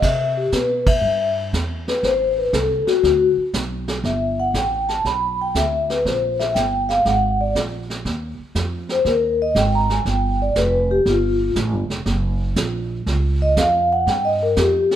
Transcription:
0.02 upright bass C3, vibraphone E5, brush sweep, kick, snare, crash
0.37 vibraphone G4
0.52 upright bass B2, vibraphone B4, kick, snare, hi-hat pedal
0.86 vibraphone E5, kick, ride
1.01 upright bass G2, brush sweep
1.53 upright bass E2, kick, snare, hi-hat pedal
1.88 vibraphone B4, snare
2.03 upright bass A1, vibraphone C5, brush sweep, kick, snare
2.38 vibraphone B4
2.53 upright bass C2, vibraphone A4, kick, snare, hi-hat pedal
2.87 vibraphone F#4, muted upright bass stroke, snare
3.03 upright bass D2, brush sweep, kick, snare
3.37 muted upright bass stroke
3.54 upright bass B1, kick, snare, hi-hat pedal
3.88 snare
4.04 upright bass G1, vibraphone E5, brush sweep, kick, snare
4.40 vibraphone F#5
4.54 upright bass A1, vibraphone G5, kick, snare, hi-hat pedal
4.89 vibraphone A5, snare
5.04 upright bass B1, vibraphone B5, brush sweep, kick, snare
5.42 vibraphone G5
5.55 upright bass D2, vibraphone E5, kick, snare, hi-hat pedal
5.90 vibraphone B4, snare
6.05 upright bass A#1, vibraphone C5, brush sweep, kick, snare
6.40 vibraphone E5, snare
6.55 upright bass G1, vibraphone G5, kick, snare, hi-hat pedal
6.89 vibraphone F5, snare
7.05 upright bass G#1, vibraphone F#5, brush sweep, kick, snare
7.41 vibraphone D5
7.55 upright bass A#1, kick, snare, hi-hat pedal
7.90 snare
8.05 upright bass D#2, brush sweep, kick, snare
8.39 muted upright bass stroke
8.55 upright bass F2, kick, snare, hi-hat pedal
8.89 vibraphone C5, snare
9.05 upright bass D#2, vibraphone A#4, brush sweep, kick, snare
9.42 vibraphone D#5
9.55 upright bass G#1, vibraphone G5, kick, snare, hi-hat pedal
9.75 vibraphone A#5
9.90 vibraphone G#5, snare
10.05 upright bass G1, vibraphone G5, brush sweep, kick, snare
10.42 vibraphone D5
10.56 upright bass F1, vibraphone B4, kick, snare, hi-hat pedal
10.91 vibraphone G4
11.05 upright bass G1, vibraphone F4, brush sweep, kick, snare
11.56 upright bass A1, kick, snare, hi-hat pedal
11.73 upright bass G1
11.90 upright bass F1, snare
12.06 upright bass F#1, brush sweep, kick, snare
12.56 upright bass A#1, kick, snare, hi-hat pedal
13.06 upright bass C#2, brush sweep, kick, snare
13.42 vibraphone D#5
13.57 upright bass F2, kick, snare, hi-hat pedal
13.93 vibraphone F#5
14.07 upright bass G2, vibraphone G5, brush sweep, kick, snare
14.25 vibraphone D#5
14.43 vibraphone A#4
14.56 upright bass F2, vibraphone G4, kick, snare, hi-hat pedal
14.91 snare

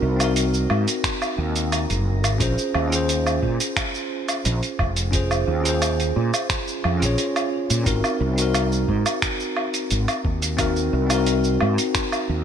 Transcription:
Already playing: tine electric piano C4 D#4 F#4 A#4
0.02 fretless electric bass C2
0.16 tine electric piano C4 D#4, closed hi-hat, low woodblock, shaker
0.22 tine electric piano F#4 A#4
0.36 closed hi-hat, shaker
0.54 shaker
0.70 fretless electric bass G#2, low woodblock
0.88 closed hi-hat, shaker
1.04 finger snap, kick, closed hi-hat, shaker
1.22 low woodblock, shaker
1.38 fretless electric bass D#2
1.56 closed hi-hat, shaker
1.72 closed hi-hat, low woodblock, shaker
1.90 fretless electric bass F#1, closed hi-hat, shaker
2.24 fretless electric bass G#1, closed hi-hat, low woodblock, shaker
2.38 fretless electric bass A#1, tine electric piano C#4 F4 G#4, kick, closed hi-hat, shaker
2.43 tine electric piano C5
2.58 shaker
2.74 fretless electric bass D#2, low woodblock
2.88 tine electric piano C#4 F4
2.92 tine electric piano G#4 C5, closed hi-hat, shaker
3.09 closed hi-hat, shaker
3.27 low woodblock, shaker
3.43 fretless electric bass A#2, kick
3.60 closed hi-hat, shaker
3.77 finger snap, kick, closed hi-hat, low woodblock, shaker
3.94 shaker
4.28 closed hi-hat, low woodblock, shaker
4.45 fretless electric bass A#1, closed hi-hat, shaker
4.63 closed hi-hat, shaker
4.79 fretless electric bass F1, kick, low woodblock
4.96 closed hi-hat, shaker
5.11 tine electric piano C#4 F4 G#4, kick, closed hi-hat, shaker
5.15 tine electric piano C5
5.31 low woodblock, shaker
5.47 fretless electric bass D#2
5.61 tine electric piano C#4 F4
5.65 tine electric piano G#4 C5, closed hi-hat, shaker
5.82 closed hi-hat, low woodblock, shaker
6.00 closed hi-hat, shaker
6.16 fretless electric bass A#2
6.34 closed hi-hat, low woodblock, shaker
6.50 finger snap, kick, closed hi-hat, shaker
6.68 shaker
6.84 fretless electric bass F2, low woodblock
6.97 tine electric piano C#4 F4
7.02 fretless electric bass A#1, tine electric piano G#4 C#5, closed hi-hat, shaker
7.18 closed hi-hat, shaker
7.36 closed hi-hat, low woodblock, shaker
7.70 fretless electric bass A#2, closed hi-hat, shaker
7.84 fretless electric bass G#1, tine electric piano C4 D#4 F#4 A#4, kick, closed hi-hat, shaker
8.04 low woodblock, shaker
8.20 fretless electric bass C2
8.34 tine electric piano C4 D#4
8.38 tine electric piano F#4 A#4, closed hi-hat, shaker
8.54 closed hi-hat, low woodblock, shaker
8.72 shaker
8.88 fretless electric bass G#2, kick
9.06 closed hi-hat, low woodblock, shaker
9.22 finger snap, kick, closed hi-hat, shaker
9.40 shaker
9.56 low woodblock
9.74 closed hi-hat, shaker
9.91 fretless electric bass G#1, closed hi-hat, shaker
10.08 closed hi-hat, low woodblock, shaker
10.25 fretless electric bass D#2, kick
10.42 closed hi-hat, shaker
10.57 tine electric piano C4 D#4 F#4 A#4, kick, closed hi-hat, low woodblock, shaker
10.76 shaker
10.93 fretless electric bass C2
11.07 tine electric piano C4 D#4, closed hi-hat, low woodblock, shaker
11.12 tine electric piano F#4 A#4
11.26 closed hi-hat, shaker
11.44 shaker
11.61 fretless electric bass G#2, low woodblock
11.78 closed hi-hat, shaker
11.95 finger snap, kick, closed hi-hat, shaker
12.12 low woodblock, shaker
12.29 fretless electric bass D#2

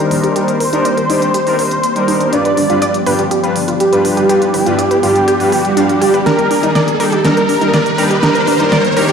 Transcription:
Already playing: analog synth pad D#3 G3 A#3 G4 D5, synth bell C5, analog synth lead C5, riser
0.00 supersaw synth G3 D4 D#4 A#4
0.11 analog synth bass A#1, open hi-hat
0.24 analog synth bass D#1, synth pluck G4, closed hi-hat
0.36 supersaw synth G3 D4 D#4 A#4, synth pluck G4, closed hi-hat
0.48 closed hi-hat
0.60 analog synth bass D#1, synth pluck A#4, open hi-hat
0.73 analog synth bass D#1, supersaw synth G3 D4 D#4 A#4, synth pluck D#4, closed hi-hat
0.85 synth pluck D5, closed hi-hat
0.97 synth pluck A#4, closed hi-hat
1.10 analog synth bass D#1, supersaw synth G3 D4 D#4 G4, synth pluck D#4, open hi-hat
1.22 analog synth bass D#1, closed hi-hat
1.34 synth pluck G4, closed hi-hat
1.47 supersaw synth G3 D4 D#4 A#4, open hi-hat
1.59 analog synth bass D#1, synth pluck A#4, open hi-hat
1.71 analog synth bass D#1, closed hi-hat
1.83 closed hi-hat
1.96 supersaw synth G3 D4 D#4 A#4, closed hi-hat
2.08 analog synth bass D#1, synth pluck D#4, open hi-hat
2.21 analog synth bass D#1, closed hi-hat
2.33 supersaw synth G2 G3 D4 F4 B4, analog synth pad F3 B3 G4, synth pluck D4, synth bell D5, analog synth lead D5, closed hi-hat
2.45 synth pluck B4, closed hi-hat
2.57 analog synth bass G1, synth pluck D4, open hi-hat
2.70 analog synth bass G1, supersaw synth G2 G3 D4 F4 B4, synth pluck F4, closed hi-hat
2.82 synth pluck D5, closed hi-hat
2.94 closed hi-hat
3.06 analog synth bass G1, supersaw synth G2 G3 D4 F4 G4, synth pluck B4, open hi-hat
3.19 analog synth bass G1, synth pluck G4, closed hi-hat
3.31 synth pluck G4, closed hi-hat
3.43 supersaw synth G2 G3 D4 F4 B4, synth pluck B4, closed hi-hat
3.56 analog synth bass G1, open hi-hat
3.68 analog synth bass G1, synth pluck F4, closed hi-hat
3.80 synth bell G4, analog synth lead G4, closed hi-hat
3.93 supersaw synth G2 G3 D4 F4 B4, synth pluck B4, closed hi-hat
4.05 analog synth bass F1, open hi-hat
4.17 analog synth bass G1, synth pluck G4, closed hi-hat
4.29 supersaw synth G2 G3 D4 F4 B4, synth pluck G4, closed hi-hat
4.42 closed hi-hat
4.54 analog synth bass G1, synth pluck B4, open hi-hat
4.66 analog synth bass G1, supersaw synth G2 G3 D4 F4 B4, synth pluck F4, closed hi-hat
4.79 synth pluck D5, closed hi-hat
4.91 synth pluck B4, closed hi-hat
5.03 analog synth bass G1, supersaw synth G2 G3 D4 F4 G4, synth pluck F4, open hi-hat
5.16 analog synth bass G1, closed hi-hat
5.28 synth pluck G4, closed hi-hat
5.40 supersaw synth G2 G3 D4 F4 B4, open hi-hat
5.52 analog synth bass G1, synth pluck G4, open hi-hat
5.65 analog synth bass G1, closed hi-hat
5.77 supersaw synth G2 G3 D4 F4 F5, synth pluck D4, closed hi-hat
5.89 closed hi-hat
6.01 analog synth bass G1, supersaw synth G3 D4 F4 D5, synth pluck G4, open hi-hat
6.14 analog synth bass G1, synth pluck B4, closed hi-hat
6.26 analog synth pad D#3 A#3, supersaw synth G3 D4 D#4 A#4, synth pluck D4, synth bell A#4, analog synth lead A#4, snare, closed hi-hat
6.38 synth pluck A#4, closed hi-hat
6.51 analog synth bass D#1, synth pluck D4, open hi-hat
6.63 analog synth bass D#1, supersaw synth G3 D4 D#4 A#4, synth pluck D#4, closed hi-hat
6.75 synth pluck D5, snare, closed hi-hat
6.88 closed hi-hat
7.00 analog synth bass D#1, supersaw synth G3 D4 D#4 G4, synth pluck A#4, open hi-hat
7.12 analog synth bass D#1, synth pluck G4, closed hi-hat
7.24 supersaw synth G3 D4 D#4 A#4, synth pluck D4, synth bell A#4, analog synth lead A#4, snare, closed hi-hat
7.37 synth pluck A#4, closed hi-hat
7.49 analog synth bass D#1, synth pluck D4, open hi-hat
7.61 analog synth bass D#1, supersaw synth G3 D4 D#4 A#4, synth pluck D#4, closed hi-hat
7.74 synth pluck D5, snare, closed hi-hat
7.86 closed hi-hat
7.98 analog synth bass A#1, supersaw synth G3 D4 D#4 G4, synth pluck A#4, open hi-hat
8.11 analog synth bass D#1, synth pluck G4, closed hi-hat
8.23 supersaw synth G3 D4 D#4 A#4, synth pluck D4, synth bell A#4, analog synth lead A#4, snare, closed hi-hat
8.35 synth pluck A#4, closed hi-hat
8.47 analog synth bass D#1, synth pluck D4, open hi-hat
8.60 analog synth bass D#1, supersaw synth G3 D4 D#4 A#4, synth pluck D#4, closed hi-hat
8.72 synth pluck D5, snare, closed hi-hat
8.84 closed hi-hat
8.97 analog synth bass D#1, supersaw synth G3 D4 D#4 G4, synth pluck A#4, open hi-hat
9.09 synth pluck G4, closed hi-hat

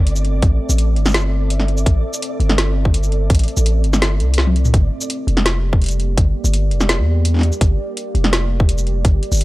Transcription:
Already playing: 808-style bass G1, ambient pad C4 A4 E5, synth texture D5
0.07 closed hi-hat
0.16 shaker
0.25 closed hi-hat
0.42 808-style bass A1, kick, closed hi-hat
0.69 808-style bass A1, shaker
0.78 closed hi-hat
0.96 808-style bass G1, closed hi-hat
1.06 snare, shaker
1.09 shaker
1.11 snare, closed hi-hat, shaker
1.20 shaker
1.50 closed hi-hat
1.60 snare
1.68 closed hi-hat
1.77 shaker
1.86 808-style bass A1, kick, closed hi-hat
2.14 shaker
2.22 closed hi-hat
2.40 808-style bass G1, closed hi-hat
2.49 snare
2.58 snare, closed hi-hat
2.85 kick
2.94 closed hi-hat
3.03 shaker
3.12 closed hi-hat
3.30 808-style bass A1, kick, closed hi-hat
3.35 closed hi-hat
3.39 closed hi-hat
3.44 closed hi-hat
3.48 closed hi-hat
3.57 808-style bass A1, shaker
3.66 closed hi-hat
3.84 808-style bass G1, closed hi-hat
3.93 snare, shaker
4.02 snare, closed hi-hat
4.20 808-style bass C2, closed hi-hat
4.34 closed hi-hat
4.38 snare
4.47 high tom
4.56 closed hi-hat
4.65 mid tom, shaker
4.73 808-style bass G1, ambient pad A#3 G4 D5, kick, closed hi-hat
5.01 shaker
5.10 closed hi-hat
5.27 808-style bass F1, closed hi-hat
5.37 snare
5.46 snare, closed hi-hat
5.73 kick
5.82 closed hi-hat
5.84 closed hi-hat
5.86 closed hi-hat
5.89 closed hi-hat, shaker
6.00 closed hi-hat
6.17 808-style bass G1, kick, closed hi-hat
6.44 808-style bass G1, shaker
6.54 closed hi-hat
6.71 808-style bass F1, closed hi-hat
6.81 snare, shaker
6.89 snare, closed hi-hat
6.99 808-style bass E2
7.25 closed hi-hat
7.34 snare
7.36 snare
7.39 snare
7.41 snare, closed hi-hat
7.52 shaker
7.61 808-style bass G1, kick, closed hi-hat
7.97 closed hi-hat
8.15 808-style bass F1, closed hi-hat
8.24 snare
8.33 snare, closed hi-hat
8.60 kick
8.69 closed hi-hat
8.78 shaker
8.87 closed hi-hat
9.05 808-style bass G1, kick, closed hi-hat
9.23 closed hi-hat
9.32 808-style bass G1, shaker
9.34 shaker
9.36 shaker
9.39 closed hi-hat, shaker

